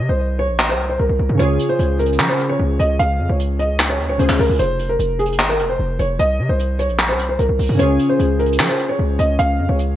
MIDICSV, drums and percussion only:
0, 0, Header, 1, 2, 480
1, 0, Start_track
1, 0, Tempo, 400000
1, 1670, Time_signature, 4, 2, 24, 8
1, 11952, End_track
2, 0, Start_track
2, 0, Title_t, "Drums"
2, 711, Note_on_c, 9, 39, 105
2, 831, Note_off_c, 9, 39, 0
2, 1671, Note_on_c, 9, 42, 80
2, 1791, Note_off_c, 9, 42, 0
2, 1910, Note_on_c, 9, 42, 85
2, 2030, Note_off_c, 9, 42, 0
2, 2152, Note_on_c, 9, 42, 73
2, 2272, Note_off_c, 9, 42, 0
2, 2391, Note_on_c, 9, 42, 43
2, 2471, Note_off_c, 9, 42, 0
2, 2471, Note_on_c, 9, 42, 56
2, 2550, Note_off_c, 9, 42, 0
2, 2550, Note_on_c, 9, 42, 74
2, 2630, Note_off_c, 9, 42, 0
2, 2630, Note_on_c, 9, 42, 84
2, 2631, Note_on_c, 9, 39, 109
2, 2750, Note_off_c, 9, 42, 0
2, 2751, Note_off_c, 9, 39, 0
2, 2871, Note_on_c, 9, 42, 64
2, 2991, Note_off_c, 9, 42, 0
2, 3351, Note_on_c, 9, 42, 81
2, 3471, Note_off_c, 9, 42, 0
2, 3591, Note_on_c, 9, 42, 80
2, 3711, Note_off_c, 9, 42, 0
2, 4072, Note_on_c, 9, 42, 68
2, 4192, Note_off_c, 9, 42, 0
2, 4310, Note_on_c, 9, 42, 68
2, 4430, Note_off_c, 9, 42, 0
2, 4550, Note_on_c, 9, 42, 82
2, 4552, Note_on_c, 9, 39, 110
2, 4670, Note_off_c, 9, 42, 0
2, 4672, Note_off_c, 9, 39, 0
2, 4791, Note_on_c, 9, 42, 65
2, 4911, Note_off_c, 9, 42, 0
2, 5030, Note_on_c, 9, 42, 72
2, 5150, Note_off_c, 9, 42, 0
2, 5150, Note_on_c, 9, 39, 62
2, 5270, Note_off_c, 9, 39, 0
2, 5270, Note_on_c, 9, 46, 83
2, 5390, Note_off_c, 9, 46, 0
2, 5510, Note_on_c, 9, 42, 81
2, 5630, Note_off_c, 9, 42, 0
2, 5750, Note_on_c, 9, 42, 85
2, 5870, Note_off_c, 9, 42, 0
2, 5992, Note_on_c, 9, 42, 70
2, 6112, Note_off_c, 9, 42, 0
2, 6231, Note_on_c, 9, 42, 44
2, 6311, Note_off_c, 9, 42, 0
2, 6311, Note_on_c, 9, 42, 58
2, 6391, Note_off_c, 9, 42, 0
2, 6391, Note_on_c, 9, 42, 74
2, 6471, Note_off_c, 9, 42, 0
2, 6471, Note_on_c, 9, 42, 81
2, 6472, Note_on_c, 9, 39, 108
2, 6591, Note_off_c, 9, 42, 0
2, 6592, Note_off_c, 9, 39, 0
2, 6712, Note_on_c, 9, 42, 66
2, 6832, Note_off_c, 9, 42, 0
2, 7191, Note_on_c, 9, 42, 80
2, 7311, Note_off_c, 9, 42, 0
2, 7431, Note_on_c, 9, 42, 77
2, 7551, Note_off_c, 9, 42, 0
2, 7913, Note_on_c, 9, 42, 73
2, 8033, Note_off_c, 9, 42, 0
2, 8151, Note_on_c, 9, 42, 68
2, 8271, Note_off_c, 9, 42, 0
2, 8271, Note_on_c, 9, 42, 41
2, 8390, Note_off_c, 9, 42, 0
2, 8390, Note_on_c, 9, 42, 81
2, 8392, Note_on_c, 9, 39, 109
2, 8510, Note_off_c, 9, 42, 0
2, 8512, Note_off_c, 9, 39, 0
2, 8631, Note_on_c, 9, 42, 64
2, 8751, Note_off_c, 9, 42, 0
2, 8870, Note_on_c, 9, 42, 70
2, 8990, Note_off_c, 9, 42, 0
2, 9111, Note_on_c, 9, 46, 83
2, 9231, Note_off_c, 9, 46, 0
2, 9351, Note_on_c, 9, 42, 79
2, 9471, Note_off_c, 9, 42, 0
2, 9590, Note_on_c, 9, 42, 86
2, 9710, Note_off_c, 9, 42, 0
2, 9832, Note_on_c, 9, 42, 70
2, 9952, Note_off_c, 9, 42, 0
2, 10070, Note_on_c, 9, 42, 42
2, 10150, Note_off_c, 9, 42, 0
2, 10150, Note_on_c, 9, 42, 58
2, 10230, Note_off_c, 9, 42, 0
2, 10230, Note_on_c, 9, 42, 74
2, 10311, Note_on_c, 9, 39, 107
2, 10350, Note_off_c, 9, 42, 0
2, 10431, Note_off_c, 9, 39, 0
2, 10551, Note_on_c, 9, 42, 66
2, 10671, Note_off_c, 9, 42, 0
2, 11030, Note_on_c, 9, 42, 80
2, 11150, Note_off_c, 9, 42, 0
2, 11270, Note_on_c, 9, 42, 77
2, 11390, Note_off_c, 9, 42, 0
2, 11751, Note_on_c, 9, 42, 72
2, 11871, Note_off_c, 9, 42, 0
2, 11952, End_track
0, 0, End_of_file